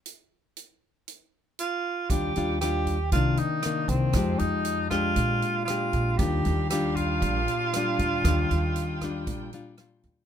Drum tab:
HH |x-x-x-x-|xxxxxxxx|xxxxxxxx|xxxxxxxx|
SD |--------|--r---r-|r--r--r-|--r---r-|
BD |--------|o--oo--o|o--oo--o|o--oo--o|

HH |xxxxxxxx|
SD |r--r--r-|
BD |o--oo--o|